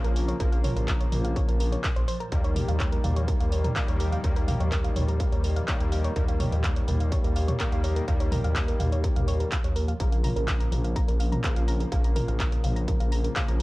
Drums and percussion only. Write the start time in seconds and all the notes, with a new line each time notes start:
0.04 closed hi-hat
0.16 open hi-hat
0.28 closed hi-hat
0.40 kick, closed hi-hat
0.52 closed hi-hat
0.64 mid tom, open hi-hat
0.77 closed hi-hat
0.88 kick, clap, closed hi-hat
1.00 closed hi-hat
1.12 mid tom, open hi-hat
1.24 closed hi-hat
1.36 kick, closed hi-hat
1.48 closed hi-hat
1.60 open hi-hat
1.72 closed hi-hat
1.84 kick, clap, closed hi-hat
1.96 closed hi-hat
2.08 open hi-hat
2.20 closed hi-hat
2.32 kick, closed hi-hat
2.44 closed hi-hat
2.56 mid tom, open hi-hat
2.68 closed hi-hat
2.80 kick, clap, closed hi-hat
2.92 closed hi-hat
3.04 mid tom, open hi-hat
3.16 closed hi-hat
3.28 kick, closed hi-hat
3.40 closed hi-hat
3.52 open hi-hat
3.64 closed hi-hat, mid tom
3.76 kick, clap, closed hi-hat
3.88 closed hi-hat
4.00 open hi-hat
4.12 closed hi-hat
4.24 kick, closed hi-hat
4.36 closed hi-hat
4.48 mid tom, open hi-hat
4.60 closed hi-hat
4.72 kick, clap, closed hi-hat
4.84 closed hi-hat
4.96 mid tom, open hi-hat
5.08 closed hi-hat
5.20 kick, closed hi-hat
5.32 closed hi-hat
5.44 open hi-hat
5.56 closed hi-hat
5.68 kick, clap, closed hi-hat
5.80 closed hi-hat
5.92 open hi-hat
6.04 closed hi-hat
6.16 kick, closed hi-hat
6.28 closed hi-hat
6.40 mid tom, open hi-hat
6.52 closed hi-hat
6.64 kick, clap, closed hi-hat
6.76 closed hi-hat
6.88 mid tom, open hi-hat
7.00 closed hi-hat
7.12 kick, closed hi-hat
7.24 closed hi-hat
7.36 open hi-hat
7.48 closed hi-hat, mid tom
7.60 kick, clap, closed hi-hat
7.72 closed hi-hat
7.84 open hi-hat
7.96 closed hi-hat
8.08 kick, closed hi-hat
8.20 closed hi-hat
8.32 mid tom, open hi-hat
8.44 closed hi-hat
8.56 kick, clap, closed hi-hat
8.68 closed hi-hat
8.80 mid tom, open hi-hat
8.92 closed hi-hat
9.04 kick, closed hi-hat
9.16 closed hi-hat, mid tom
9.28 open hi-hat
9.40 closed hi-hat
9.52 kick, clap, closed hi-hat
9.64 closed hi-hat
9.76 open hi-hat
9.88 closed hi-hat
10.00 kick, closed hi-hat
10.12 closed hi-hat
10.24 mid tom, open hi-hat
10.36 closed hi-hat
10.48 kick, clap, closed hi-hat
10.60 closed hi-hat
10.72 mid tom, open hi-hat
10.84 closed hi-hat
10.96 kick, closed hi-hat
11.08 closed hi-hat
11.20 open hi-hat
11.32 closed hi-hat, mid tom
11.44 kick, clap, closed hi-hat
11.56 closed hi-hat
11.68 open hi-hat
11.80 closed hi-hat
11.92 kick, closed hi-hat
12.04 closed hi-hat
12.16 mid tom, open hi-hat
12.28 closed hi-hat
12.40 kick, clap, closed hi-hat
12.52 closed hi-hat
12.64 mid tom, open hi-hat
12.76 closed hi-hat
12.88 kick, closed hi-hat
13.00 closed hi-hat
13.12 open hi-hat
13.24 closed hi-hat
13.36 kick, clap, closed hi-hat
13.48 closed hi-hat